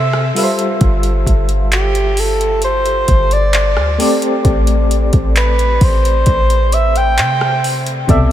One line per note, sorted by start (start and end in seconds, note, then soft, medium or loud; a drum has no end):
0.00 0.31 C3 medium
0.00 0.32 C3 loud
0.00 0.32 C4 medium
0.00 0.32 A4 medium
0.00 0.33 E5 loud
0.00 0.36 E5 medium
0.13 cross-stick medium
0.35 3.95 G3 medium
0.35 3.95 F4 medium
0.35 3.96 A4 medium
0.35 0.43 B4 medium
0.35 3.96 E5 medium
0.35 open hi-hat medium
0.43 3.99 C5 medium
0.59 closed hi-hat medium
0.81 1.25 G1 loud
0.81 kick loud
0.81 closed hi-hat medium
1.03 closed hi-hat medium
1.27 3.05 G1 loud
1.27 kick medium
1.27 closed hi-hat medium
1.49 closed hi-hat medium
1.72 2.21 G4 medium
1.72 clap loud
1.72 closed hi-hat medium
1.95 closed hi-hat medium
2.17 2.64 A4 medium
2.17 open hi-hat medium
2.41 closed hi-hat medium
2.62 3.35 C5 loud
2.62 closed hi-hat medium
2.86 closed hi-hat medium
3.08 3.78 G1 loud
3.08 kick loud
3.08 closed hi-hat medium
3.31 4.00 D5 loud
3.31 closed hi-hat soft
3.53 clap loud
3.53 closed hi-hat medium
3.77 3.98 D2 loud
3.77 cross-stick medium
3.98 7.58 A3 medium
3.98 7.60 C4 medium
3.98 7.59 G4 medium
3.98 7.59 A4 medium
3.98 7.60 D5 medium
3.98 open hi-hat medium
4.22 closed hi-hat medium
4.45 5.10 A1 loud
4.45 kick loud
4.45 closed hi-hat medium
4.67 closed hi-hat medium
4.91 closed hi-hat medium
5.13 5.79 A1 loud
5.13 kick loud
5.13 closed hi-hat medium
5.36 5.85 B4 medium
5.36 clap loud
5.36 closed hi-hat medium
5.59 closed hi-hat medium
5.81 6.25 A1 loud
5.81 6.75 C5 loud
5.81 kick loud
5.81 open hi-hat medium
6.05 closed hi-hat medium
6.26 7.20 A1 loud
6.26 kick loud
6.26 closed hi-hat medium
6.50 closed hi-hat medium
6.72 6.99 E5 loud
6.72 closed hi-hat medium
6.96 7.64 G5 loud
6.96 closed hi-hat soft
7.18 8.05 C3 loud
7.18 clap loud
7.18 closed hi-hat medium
7.41 cross-stick medium
7.64 open hi-hat medium
7.87 closed hi-hat medium
8.07 8.32 C2 loud
8.07 8.32 B2 medium
8.07 8.32 C3 medium
8.07 8.32 A4 medium
8.07 8.32 D5 medium
8.07 8.32 E5 medium
8.07 kick loud
8.07 closed hi-hat medium